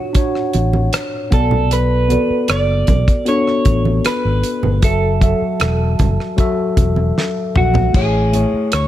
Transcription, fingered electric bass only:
0, 0, Header, 1, 3, 480
1, 0, Start_track
1, 0, Tempo, 778210
1, 1058, Time_signature, 4, 2, 24, 8
1, 5475, End_track
2, 0, Start_track
2, 0, Title_t, "Fingered electric bass"
2, 0, Program_c, 0, 33
2, 340, Note_on_c, 0, 33, 83
2, 542, Note_off_c, 0, 33, 0
2, 818, Note_on_c, 0, 35, 87
2, 1324, Note_off_c, 0, 35, 0
2, 1540, Note_on_c, 0, 30, 77
2, 1742, Note_off_c, 0, 30, 0
2, 1780, Note_on_c, 0, 35, 81
2, 1880, Note_off_c, 0, 35, 0
2, 2257, Note_on_c, 0, 33, 80
2, 2460, Note_off_c, 0, 33, 0
2, 2623, Note_on_c, 0, 32, 77
2, 2722, Note_off_c, 0, 32, 0
2, 2862, Note_on_c, 0, 31, 66
2, 2981, Note_off_c, 0, 31, 0
2, 2981, Note_on_c, 0, 30, 86
2, 3283, Note_off_c, 0, 30, 0
2, 3461, Note_on_c, 0, 28, 79
2, 3663, Note_off_c, 0, 28, 0
2, 3703, Note_on_c, 0, 30, 84
2, 3802, Note_off_c, 0, 30, 0
2, 4179, Note_on_c, 0, 28, 72
2, 4382, Note_off_c, 0, 28, 0
2, 4664, Note_on_c, 0, 34, 84
2, 4864, Note_off_c, 0, 34, 0
2, 4904, Note_on_c, 0, 33, 87
2, 5206, Note_off_c, 0, 33, 0
2, 5386, Note_on_c, 0, 38, 77
2, 5475, Note_off_c, 0, 38, 0
2, 5475, End_track
3, 0, Start_track
3, 0, Title_t, "Muted fingered electric bass strokes"
3, 1420, Note_on_c, 9, 29, 45
3, 1482, Note_off_c, 9, 29, 0
3, 2501, Note_on_c, 9, 29, 43
3, 2563, Note_off_c, 9, 29, 0
3, 3342, Note_on_c, 9, 29, 39
3, 3404, Note_off_c, 9, 29, 0
3, 5266, Note_on_c, 9, 29, 39
3, 5328, Note_off_c, 9, 29, 0
3, 5475, End_track
0, 0, End_of_file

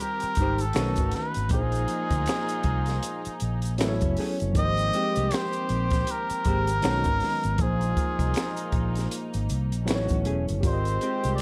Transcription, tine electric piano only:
0, 0, Header, 1, 2, 480
1, 0, Start_track
1, 0, Tempo, 759494
1, 957, Time_signature, 4, 2, 24, 8
1, 7217, End_track
2, 0, Start_track
2, 0, Title_t, "Tine electric piano"
2, 0, Program_c, 0, 4
2, 0, Control_c, 0, 64, 127
2, 0, Note_on_c, 0, 51, 56
2, 0, Note_on_c, 0, 55, 54
2, 0, Note_on_c, 0, 60, 58
2, 0, Note_on_c, 0, 65, 61
2, 0, Note_on_c, 0, 70, 64
2, 443, Note_off_c, 0, 51, 0
2, 449, Note_off_c, 0, 55, 0
2, 461, Note_off_c, 0, 65, 0
2, 465, Note_off_c, 0, 70, 0
2, 468, Note_on_c, 0, 51, 72
2, 470, Note_on_c, 0, 57, 65
2, 475, Note_on_c, 0, 61, 58
2, 476, Note_off_c, 0, 60, 0
2, 482, Note_on_c, 0, 66, 67
2, 484, Control_c, 0, 64, 0
2, 487, Note_on_c, 0, 71, 75
2, 595, Control_c, 0, 64, 127
2, 940, Note_on_c, 0, 53, 56
2, 948, Note_on_c, 0, 58, 56
2, 952, Note_off_c, 0, 51, 0
2, 953, Note_off_c, 0, 57, 0
2, 956, Note_off_c, 0, 61, 0
2, 960, Note_off_c, 0, 66, 0
2, 960, Note_on_c, 0, 62, 46
2, 962, Note_off_c, 0, 71, 0
2, 966, Control_c, 0, 64, 0
2, 971, Note_on_c, 0, 68, 62
2, 979, Note_on_c, 0, 72, 69
2, 1001, Note_on_c, 0, 63, 53
2, 1007, Note_off_c, 0, 62, 0
2, 1072, Control_c, 0, 64, 127
2, 2363, Note_off_c, 0, 53, 0
2, 2367, Note_off_c, 0, 58, 0
2, 2379, Note_off_c, 0, 68, 0
2, 2383, Note_off_c, 0, 72, 0
2, 2392, Note_on_c, 0, 54, 86
2, 2394, Note_off_c, 0, 63, 0
2, 2396, Note_on_c, 0, 59, 70
2, 2403, Note_on_c, 0, 64, 81
2, 2405, Control_c, 0, 64, 0
2, 2407, Note_on_c, 0, 69, 77
2, 2415, Note_on_c, 0, 71, 66
2, 2454, Note_off_c, 0, 71, 0
2, 2454, Note_on_c, 0, 73, 89
2, 2529, Control_c, 0, 64, 127
2, 2854, Note_on_c, 0, 53, 64
2, 2864, Note_on_c, 0, 58, 55
2, 2874, Note_off_c, 0, 54, 0
2, 2875, Note_on_c, 0, 63, 54
2, 2877, Note_off_c, 0, 59, 0
2, 2880, Note_off_c, 0, 64, 0
2, 2882, Note_off_c, 0, 69, 0
2, 2884, Control_c, 0, 64, 0
2, 2887, Note_on_c, 0, 56, 55
2, 2896, Note_on_c, 0, 70, 62
2, 2905, Note_off_c, 0, 73, 0
2, 2935, Note_off_c, 0, 70, 0
2, 2938, Note_on_c, 0, 72, 69
2, 2977, Control_c, 0, 64, 127
2, 4280, Note_off_c, 0, 53, 0
2, 4285, Note_off_c, 0, 58, 0
2, 4290, Note_off_c, 0, 63, 0
2, 4297, Note_off_c, 0, 56, 0
2, 4306, Note_on_c, 0, 51, 66
2, 4312, Note_on_c, 0, 56, 65
2, 4316, Note_on_c, 0, 61, 62
2, 4322, Note_off_c, 0, 72, 0
2, 4323, Note_on_c, 0, 66, 62
2, 4325, Control_c, 0, 64, 0
2, 4326, Note_on_c, 0, 59, 76
2, 4431, Control_c, 0, 64, 127
2, 4779, Note_on_c, 0, 53, 58
2, 4791, Note_off_c, 0, 51, 0
2, 4794, Note_off_c, 0, 56, 0
2, 4794, Note_on_c, 0, 58, 62
2, 4797, Note_off_c, 0, 61, 0
2, 4800, Note_off_c, 0, 66, 0
2, 4802, Note_off_c, 0, 59, 0
2, 4803, Note_on_c, 0, 63, 55
2, 4806, Control_c, 0, 64, 0
2, 4815, Note_on_c, 0, 68, 55
2, 4823, Note_on_c, 0, 72, 64
2, 4900, Control_c, 0, 64, 127
2, 6203, Note_off_c, 0, 53, 0
2, 6210, Note_off_c, 0, 58, 0
2, 6215, Note_off_c, 0, 63, 0
2, 6220, Note_off_c, 0, 68, 0
2, 6225, Note_off_c, 0, 72, 0
2, 6229, Note_on_c, 0, 54, 73
2, 6233, Note_on_c, 0, 59, 74
2, 6240, Note_on_c, 0, 64, 70
2, 6244, Note_on_c, 0, 69, 66
2, 6245, Control_c, 0, 64, 0
2, 6250, Note_on_c, 0, 71, 70
2, 6292, Note_off_c, 0, 71, 0
2, 6292, Note_on_c, 0, 73, 86
2, 6367, Control_c, 0, 64, 127
2, 6701, Note_on_c, 0, 67, 56
2, 6708, Note_on_c, 0, 60, 60
2, 6713, Note_off_c, 0, 54, 0
2, 6715, Note_off_c, 0, 59, 0
2, 6718, Note_off_c, 0, 64, 0
2, 6718, Note_on_c, 0, 65, 62
2, 6720, Note_off_c, 0, 69, 0
2, 6724, Control_c, 0, 64, 0
2, 6730, Note_on_c, 0, 70, 55
2, 6744, Note_off_c, 0, 73, 0
2, 6744, Note_on_c, 0, 74, 48
2, 6779, Note_off_c, 0, 74, 0
2, 6783, Note_on_c, 0, 75, 62
2, 6830, Control_c, 0, 64, 127
2, 7217, Note_off_c, 0, 60, 0
2, 7217, Note_off_c, 0, 65, 0
2, 7217, Note_off_c, 0, 67, 0
2, 7217, Note_off_c, 0, 70, 0
2, 7217, Note_off_c, 0, 75, 0
2, 7217, End_track
0, 0, End_of_file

